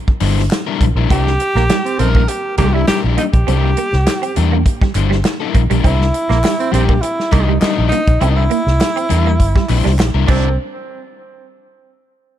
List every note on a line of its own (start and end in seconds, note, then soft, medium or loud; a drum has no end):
0.08 muted fingered electric bass stroke medium
0.08 kick medium
0.21 0.47 G1 medium
0.21 0.40 G3 medium
0.21 0.40 D4 medium
0.21 0.40 E4 medium
0.21 0.40 C5 medium
0.21 clap medium
0.21 open hi-hat medium
0.39 snare soft
0.51 snare loud
0.51 clap medium
0.51 closed hi-hat loud
0.67 0.85 G3 medium
0.67 0.84 D4 medium
0.67 0.84 E4 medium
0.67 0.84 A#4 loud
0.80 0.94 A#1 medium
0.80 kick loud
0.80 closed hi-hat medium
0.95 1.08 A#1 medium
0.95 1.08 G3 soft
0.95 1.09 D4 medium
0.95 1.10 E4 medium
0.95 1.10 A#4 medium
1.09 1.36 C2 loud
1.09 1.28 G3 medium
1.09 1.20 C4 medium
1.09 1.29 D4 loud
1.09 1.29 E4 loud
1.09 2.01 G4 loud
1.09 1.29 A#4 loud
1.09 kick loud
1.09 closed hi-hat medium
1.27 snare soft
1.40 muted clean electric guitar stroke soft
1.40 closed hi-hat medium
1.55 1.67 A#1 loud
1.55 1.65 A#3 medium
1.55 1.64 A#3 medium
1.55 snare soft
1.70 1.80 G3 medium
1.70 snare loud
1.70 clap loud
1.70 closed hi-hat loud
1.85 1.96 C4 medium
1.85 closed hi-hat soft
1.99 2.25 A#1 loud
1.99 2.20 G3 medium
1.99 2.08 C4 medium
1.99 2.20 D4 medium
1.99 2.21 E4 loud
1.99 2.30 A#4 loud
1.99 2.21 A#4 loud
1.99 muted clean electric guitar stroke soft
1.99 closed hi-hat medium
2.15 2.24 A#3 medium
2.15 kick medium
2.28 2.57 G4 loud
2.28 muted clean electric guitar stroke soft
2.28 closed hi-hat medium
2.57 2.84 C2 loud
2.57 2.69 G3 medium
2.57 2.79 G3 medium
2.57 2.71 A#3 medium
2.57 2.80 D4 loud
2.57 2.79 E4 loud
2.57 2.75 G4 loud
2.57 2.80 A#4 loud
2.57 kick loud
2.57 clap medium
2.57 closed hi-hat medium
2.74 2.83 G3 medium
2.74 2.87 E4 loud
2.88 3.03 G3 medium
2.88 3.03 D4 medium
2.88 3.04 E4 medium
2.88 3.01 G4 loud
2.88 3.04 A#4 medium
2.88 muted fingered electric bass stroke soft
2.88 snare loud
2.88 clap medium
2.88 closed hi-hat medium
3.04 3.16 A#1 medium
3.04 3.22 G3 medium
3.04 3.22 D4 medium
3.04 3.22 E4 medium
3.04 3.22 A#4 medium
3.17 3.28 A#3 medium
3.17 3.25 D#4 medium
3.17 closed hi-hat medium
3.33 3.46 A#1 medium
3.33 4.48 G4 loud
3.33 kick loud
3.33 closed hi-hat medium
3.47 3.74 C2 loud
3.47 3.68 G3 medium
3.47 3.57 C4 medium
3.47 3.68 D4 medium
3.47 3.68 E4 medium
3.47 3.69 A#4 loud
3.47 closed hi-hat medium
3.63 muted clean electric guitar stroke soft
3.77 3.87 A#3 medium
3.77 closed hi-hat medium
3.93 4.05 C2 loud
3.93 snare soft
4.07 snare loud
4.07 clap medium
4.07 closed hi-hat loud
4.22 4.31 C4 medium
4.22 closed hi-hat medium
4.35 4.62 E2 loud
4.35 4.55 G3 medium
4.35 4.55 D4 loud
4.35 4.55 E4 medium
4.35 4.55 A#4 loud
4.35 muted clean electric guitar stroke soft
4.35 closed hi-hat medium
4.52 4.61 A#3 medium
4.66 kick medium
4.66 closed hi-hat medium
4.81 4.91 G3 medium
4.81 muted fingered electric bass stroke soft
4.81 kick loud
4.81 snare soft
4.95 5.21 G1 medium
4.95 5.14 G3 medium
4.95 5.14 D4 medium
4.95 5.14 E4 loud
4.95 5.15 C5 medium
4.95 muted clean electric guitar stroke soft
4.95 clap medium
4.95 closed hi-hat medium
5.10 5.19 G3 medium
5.10 snare soft
5.24 muted clean electric guitar stroke soft
5.24 snare loud
5.24 clap medium
5.24 closed hi-hat medium
5.40 5.61 G3 medium
5.40 5.60 D4 medium
5.40 5.60 E4 medium
5.40 5.60 A#4 medium
5.55 5.68 A#1 medium
5.55 5.65 A#3 medium
5.55 kick medium
5.55 closed hi-hat medium
5.70 5.83 A#1 medium
5.70 5.79 G3 medium
5.70 5.82 G3 medium
5.70 5.82 D4 medium
5.70 5.83 E4 medium
5.70 5.83 A#4 medium
5.70 closed hi-hat medium
5.83 6.10 C2 loud
5.83 6.02 G3 medium
5.83 5.94 C4 medium
5.83 6.02 D4 medium
5.83 6.73 E4 loud
5.83 6.03 E4 medium
5.83 6.03 A#4 medium
5.83 kick loud
5.83 closed hi-hat medium
6.01 snare soft
6.14 muted clean electric guitar stroke soft
6.14 closed hi-hat medium
6.29 6.42 A#1 medium
6.29 6.38 A#3 medium
6.29 snare soft
6.44 6.54 G3 medium
6.44 snare loud
6.44 clap loud
6.44 closed hi-hat loud
6.59 6.70 C4 medium
6.59 closed hi-hat soft
6.72 6.99 A#1 medium
6.72 6.91 G3 loud
6.72 6.83 C4 medium
6.72 6.91 D4 loud
6.72 6.92 E4 loud
6.72 7.03 G4 loud
6.72 6.92 A#4 loud
6.72 muted clean electric guitar stroke soft
6.72 closed hi-hat medium
6.89 6.98 A#3 medium
6.89 kick medium
7.01 7.34 E4 medium
7.01 muted clean electric guitar stroke soft
7.01 closed hi-hat medium
7.20 snare soft
7.32 7.58 C2 loud
7.32 7.50 G3 loud
7.32 7.43 G3 medium
7.32 7.45 A#3 medium
7.32 7.51 D4 loud
7.32 7.59 D#4 medium
7.32 7.51 E4 loud
7.32 7.51 A#4 loud
7.32 kick loud
7.32 clap medium
7.32 closed hi-hat medium
7.48 7.57 G3 medium
7.60 7.76 G3 medium
7.60 7.77 D4 medium
7.60 7.88 D#4 medium
7.60 7.76 E4 medium
7.60 7.76 A#4 medium
7.60 muted fingered electric bass stroke soft
7.60 snare loud
7.60 clap loud
7.60 closed hi-hat medium
7.78 7.90 A#1 loud
7.78 7.95 G3 medium
7.78 7.95 D4 medium
7.78 7.95 E4 medium
7.78 7.95 A#4 medium
7.89 8.02 A#3 medium
7.89 8.22 D#4 loud
7.89 closed hi-hat medium
8.07 8.19 A#1 medium
8.07 kick loud
8.07 closed hi-hat medium
8.20 8.47 C2 loud
8.20 8.42 G3 medium
8.20 8.31 C4 medium
8.20 8.42 D4 medium
8.20 8.30 E4 medium
8.20 8.42 E4 medium
8.20 8.42 A#4 medium
8.20 closed hi-hat medium
8.29 8.37 D#4 medium
8.36 9.99 E4 loud
8.36 muted clean electric guitar stroke soft
8.50 8.61 A#3 medium
8.50 closed hi-hat medium
8.67 8.79 C2 medium
8.67 snare soft
8.81 snare loud
8.81 clap loud
8.81 closed hi-hat loud
8.96 9.05 C4 medium
8.96 closed hi-hat medium
9.09 9.36 E2 loud
9.09 9.28 G3 medium
9.09 9.29 D4 medium
9.09 9.29 E4 medium
9.09 9.29 A#4 loud
9.09 muted clean electric guitar stroke soft
9.09 closed hi-hat medium
9.26 9.35 A#3 medium
9.40 9.54 G1 medium
9.40 kick medium
9.40 closed hi-hat medium
9.55 9.64 G3 medium
9.55 kick loud
9.55 snare soft
9.68 9.83 A#1 medium
9.68 9.90 G3 medium
9.68 9.90 D4 medium
9.68 9.90 E4 loud
9.68 9.90 C5 medium
9.68 muted clean electric guitar stroke soft
9.68 clap medium
9.68 open hi-hat medium
9.84 9.99 C2 loud
9.84 9.93 G3 medium
9.84 snare soft
9.99 10.13 A#1 medium
9.99 muted clean electric guitar stroke soft
9.99 snare loud
9.99 clap medium
9.99 closed hi-hat medium
10.14 10.27 C2 medium
10.14 10.27 G3 medium
10.14 10.28 D4 medium
10.14 10.27 E4 medium
10.14 10.28 A#4 medium
10.28 10.56 C2 loud
10.28 10.47 G3 medium
10.28 10.46 G3 medium
10.28 10.56 C4 medium
10.28 10.49 D4 loud
10.28 10.47 D4 medium
10.28 10.47 E4 loud
10.28 10.48 A#4 loud
10.28 kick loud
10.28 clap medium
10.28 crash loud